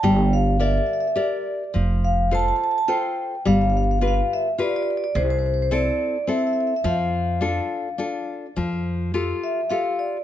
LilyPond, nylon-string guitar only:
\new Staff \with { instrumentName = "Nylon-string guitar" } { \time 3/4 \key f \major \tempo 4 = 106 g4 <g' bes' d''>4 <g' bes' d''>4 | f4 <f' a' c''>4 <f' a' c''>4 | g4 <f' g' b'>4 <f' g' b'>4 | c4 <c' e' a'>4 <c' e' a'>4 |
f4 <d' f' a'>4 <d' f' a'>4 | f4 <f' g' a'>4 <f' g' a'>4 | }